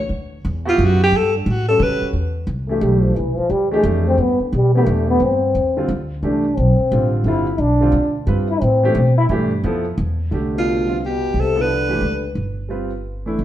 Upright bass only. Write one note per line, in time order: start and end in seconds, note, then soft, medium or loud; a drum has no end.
0.09 0.43 D2 medium
0.45 0.78 E2 loud
0.78 1.11 F#2 loud
1.12 1.45 G2 medium
1.46 1.79 A2 loud
1.80 2.00 C#3 loud
2.02 muted upright bass stroke soft
2.13 2.46 E2 medium
2.47 2.81 C2 medium
2.81 3.15 B1 loud
3.16 3.37 C2 medium
3.37 muted upright bass stroke soft
3.50 3.83 D2 medium
3.83 4.17 F2 loud
4.18 4.38 G2 medium
4.40 muted upright bass stroke soft
4.53 4.86 B2 medium
4.86 5.19 E2 medium
5.20 5.53 G2 medium
5.55 5.88 E2 medium
5.88 6.22 D2 medium
6.23 6.56 C2 medium
6.57 6.78 B1 medium
6.79 muted upright bass stroke soft
6.92 7.24 A1 medium
7.24 7.58 G1 medium
7.58 7.91 B1 medium
7.92 8.26 D2 medium
8.27 8.60 G2 medium
8.61 8.94 A2 medium
8.95 9.28 B2 loud
9.29 9.62 G2 medium
9.63 9.97 F2 medium
9.98 10.31 E2 loud
10.32 11.30 C2 medium
11.34 11.98 C2 medium
12.01 12.34 C#2 medium
12.35 13.35 G1 medium
13.39 13.45 C2 medium